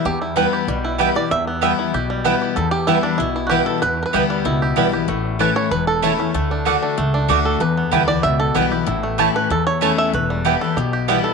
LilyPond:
<<
  \new Staff \with { instrumentName = "Mandolin" } { \time 4/4 \key e \dorian \tempo 4 = 190 r4 <b e' b' g''>8 r4. <b e' b' g''>8 r8 | r4 <b e' b' g''>8 r4. <b e' b' g''>8 r8 | r4 <b e' b' g''>8 r4. <b e' b' g''>8 r8 | r4 <b e' b' g''>8 r4. <b e' b' g''>8 r8 |
r4 <a e' cis'' a''>8 r4. <a e' cis'' a''>8 r8 | r4 <a fis' d'' fis''>8 r4. <a fis' d'' fis''>8 r8 | r4 <b e' b' g''>8 r4. <b e' b' g''>8 r8 | r4 <a e' cis'' a''>8 r4. <a e' cis'' a''>8 r8 |
r4 <b e' b' g''>8 r4. <b e' b' g''>8 r8 | }
  \new Staff \with { instrumentName = "Five-string banjo" } { \time 4/4 \key e \dorian << { g'4 b'4 r4. d''8 | e''4 e''4 r4 b'4 | a'8 g'8 e'8 d'8 e'8.~ e'32 fis'32 g'8 a'8 | b'8~ b'32 ais'32 b'8 r2 r8. |
r4 b'8 cis''8 b'8 a'4.~ | a'4 r2 r8 a'8 | b'4. d''8 e''8 a'8 b'4 | r4. b'8 a'8 cis''4 e''8 |
b'8 r4 a'8 g'4. a'8 | } \\ { g8 e'4 g'8 g8 e'8 g'4~ | g'8 b4 e'8 g'8 g4 g'8~ | g'4 r4. e'4. | r4 g'8 g8 e'8 g'8 g8 g'8 |
a4. r4. a8 cis'8 | a8 d'8 a8 d'8 a8 d'8 a4 | r8 b8 g'4. r4 g'8 | e'8 a8 g'4. r8 a4 |
r8 g8 g'4. g'8 g4 | } >> }
  \new Staff \with { instrumentName = "Steel-string acoustic guitar" } { \time 4/4 \key e \dorian << { r4 <e g b e'>4 r4 <e g b e'>8 <b e'>8 | r4 <e g b e'>4 r4 <e g b e'>4 | r4 <e g b e'>4 r4 <e g b e'>4 | r4 <e g b e'>4 r4 <e g b e'>8 <b e'>8 |
r4 <e a cis' e'>4 r4 <e a cis' e'>8 <cis' e'>8 | r4 <d a d' fis'>4 r4 <d a d' fis'>4 | r4 <e g b e'>8 <b e'>8 r4 <e g b e'>8 <b e'>8 | r4 <e a cis' e'>4 r4 <e a cis' e'>4 |
r4 <e g b e'>8 <b e'>8 r4 <e g b e'>4 | } \\ { e,2 b,2 | e,2 b,2 | e,2 b,2 | e,2 b,2 |
a,2 e,2 | d2 a,2 | e,2 b,2 | a,2 e,2 |
e,2 b,2 | } >> }
  \new Staff \with { instrumentName = "Upright bass" } { \clef bass \time 4/4 \key e \dorian e,2 b,,2 | e,2 b,,2 | e,2 b,,2 | e,4 d,4 cis,4 b,,4 |
a,,2 e,,2 | d,2 cis,4 d,4 | e,4 d,4 cis,4 b,,4 | a,,2 e,2 |
e,,2 b,,2 | }
>>